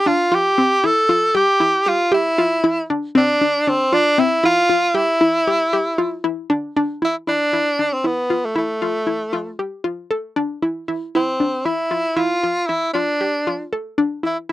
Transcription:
0.06 0.27 D4 medium
0.06 0.36 F4 medium
0.32 0.53 F4 medium
0.32 0.87 G4 medium
0.58 0.79 C4 medium
0.84 1.05 E4 medium
0.84 1.36 A4 loud
1.09 1.30 F4 medium
1.35 1.56 G4 medium
1.35 1.90 G4 loud
1.60 1.82 E4 medium
1.86 2.13 F4 medium
1.86 2.08 G4 medium
2.12 2.86 E4 medium
2.12 2.33 G4 medium
2.38 2.59 F4 medium
2.64 2.85 E4 medium
2.90 3.11 D4 medium
3.15 3.36 C4 loud
3.15 3.70 D4 medium
3.41 3.62 D4 medium
3.67 3.95 C4 medium
3.67 3.88 D4 medium
3.92 4.21 D4 loud
3.92 4.14 F4 medium
4.18 4.39 C4 medium
4.18 4.44 E4 medium
4.44 4.65 E4 medium
4.44 4.97 F4 loud
4.70 4.91 F4 medium
4.95 6.24 E4 medium
4.95 5.16 G4 medium
5.21 5.42 E4 medium
5.47 5.68 G4 medium
5.73 5.94 G4 medium
5.98 6.20 F4 medium
6.24 6.45 E4 medium
6.50 6.71 D4 medium
6.76 6.97 D4 medium
7.02 7.23 E4 medium
7.02 7.15 E4 medium
7.27 7.94 D4 medium
7.27 7.48 E4 medium
7.53 7.74 E4 medium
7.79 8.00 D4 medium
7.93 8.08 C4 medium
8.04 8.47 B3 medium
8.04 8.26 E4 medium
8.30 8.51 F4 medium
8.45 8.57 A3 medium
8.56 9.56 A3 medium
8.56 8.77 E4 medium
8.82 9.03 F4 medium
9.07 9.28 E4 medium
9.33 9.54 F4 medium
9.59 9.80 G4 medium
9.84 10.06 F4 medium
10.11 10.32 A4 medium
10.36 10.58 D4 medium
10.62 10.84 E4 medium
10.88 11.10 E4 medium
11.15 11.67 C4 medium
11.15 11.36 E4 medium
11.40 11.61 D4 medium
11.65 11.87 E4 medium
11.65 12.18 E4 medium
11.91 12.12 F4 medium
12.17 12.38 E4 medium
12.17 12.69 F4 medium
12.43 12.65 F4 medium
12.67 12.93 E4 medium
12.67 12.90 E4 medium
12.94 13.68 D4 medium
12.94 13.16 F4 medium
13.21 13.42 G4 medium
13.47 13.68 F4 medium
13.73 13.94 A4 medium
13.98 14.19 D4 medium
14.23 14.45 E4 medium
14.23 14.37 E4 medium

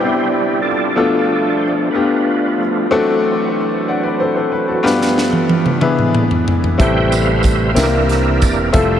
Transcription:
0.00 1.00 C3 medium
0.00 0.92 G3 medium
0.00 0.99 G3 medium
0.00 0.96 B3 medium
0.00 1.00 C4 medium
0.00 0.93 D4 medium
0.00 0.97 D4 soft
0.00 0.06 E4 medium
0.00 0.61 E4 medium
0.00 0.60 G4 medium
0.00 0.99 G4 medium
0.00 0.28 C5 loud
0.06 0.69 E4 medium
0.62 1.57 F4 medium
0.62 1.57 A4 medium
0.62 1.63 D5 loud
0.96 1.90 B2 medium
0.96 1.90 F3 medium
0.96 1.90 A3 medium
0.96 1.62 A3 medium
0.96 1.62 B3 medium
0.96 1.90 D4 medium
0.96 1.63 D4 medium
0.96 1.63 F4 medium
0.96 1.63 A4 medium
1.57 1.73 C5 medium
1.91 2.60 A3 medium
1.91 2.60 B3 medium
1.91 2.57 D4 medium
1.91 2.87 F4 medium
1.91 2.61 B4 medium
1.95 2.60 D4 medium
1.95 2.60 F4 medium
1.95 2.60 G4 medium
2.58 2.87 F3 soft
2.58 2.88 A3 soft
2.58 2.88 D4 medium
2.90 4.50 E3 medium
2.90 4.51 F#3 medium
2.90 3.56 A3 loud
2.90 3.56 C4 loud
2.90 4.52 C4 medium
2.90 3.57 D4 loud
2.90 3.57 F#4 loud
2.90 3.57 A4 loud
3.88 4.02 D5 medium
3.88 4.04 F#5 medium
4.03 4.20 B4 medium
4.03 4.19 D5 medium
4.20 4.35 A4 medium
4.20 4.35 C5 medium
4.36 4.52 A4 medium
4.36 4.52 C5 medium
4.52 4.81 E3 soft
4.52 4.82 F#3 soft
4.52 4.82 C4 medium
4.52 4.68 B4 medium
4.68 5.00 F#4 medium
4.68 4.99 A4 medium
4.83 5.78 G2 medium
4.83 5.78 F3 medium
4.83 5.78 A3 medium
4.83 5.50 B3 loud
4.83 5.79 B3 medium
4.83 5.50 D4 loud
4.83 5.50 F4 medium
4.83 5.50 G4 medium
4.83 5.50 B4 loud
4.83 snare medium
5.02 snare soft
5.18 snare medium
5.33 high tom medium
5.49 high tom medium
5.66 mid tom medium
5.80 6.24 D3 soft
5.80 6.75 E3 medium
5.80 6.25 G#3 soft
5.80 6.47 B3 medium
5.80 6.25 B3 soft
5.80 6.47 D4 medium
5.80 6.47 E4 medium
5.80 6.48 G#4 medium
5.80 6.48 B4 loud
5.80 mid tom medium
5.99 mid tom medium
6.15 mid tom medium
6.31 floor tom medium
6.48 floor tom medium
6.64 floor tom medium
6.77 7.73 A1 medium
6.77 7.72 A2 medium
6.77 7.71 C3 soft
6.77 7.72 G3 soft
6.77 7.44 A3 medium
6.77 7.44 C4 medium
6.77 7.44 E4 medium
6.77 7.45 G4 medium
6.77 7.45 A4 medium
6.77 7.72 B4 medium
6.77 7.72 C5 medium
6.77 7.46 E5 medium
6.77 kick loud
6.77 closed hi-hat medium
6.81 7.14 G5 loud
7.12 7.47 F5 medium
7.12 closed hi-hat soft
7.12 tambourine medium
7.43 kick medium
7.43 closed hi-hat medium
7.43 tambourine soft
7.47 7.72 E5 medium
7.69 7.76 F5 medium
7.74 8.42 C2 loud
7.74 8.69 C3 medium
7.74 8.70 E3 medium
7.74 8.41 A#3 medium
7.74 8.70 A#3 soft
7.74 8.41 C4 medium
7.74 8.70 D4 medium
7.74 8.41 E4 medium
7.74 8.41 G4 medium
7.74 8.70 G4 medium
7.74 8.42 A#4 medium
7.74 8.70 A#4 medium
7.74 snare loud
7.74 closed hi-hat medium
7.74 tambourine medium
7.79 8.44 E5 medium
8.10 snare soft
8.10 closed hi-hat medium
8.42 8.72 E1 medium
8.42 8.56 D5 medium
8.42 kick medium
8.42 closed hi-hat medium
8.42 tambourine medium
8.72 9.00 F1 loud
8.72 9.00 G3 medium
8.72 9.00 A3 medium
8.72 9.00 C4 medium
8.72 9.00 E4 medium
8.72 9.00 F4 medium
8.72 9.00 A4 medium
8.72 9.00 C5 medium
8.72 9.00 E5 medium
8.72 kick loud
8.72 closed hi-hat loud

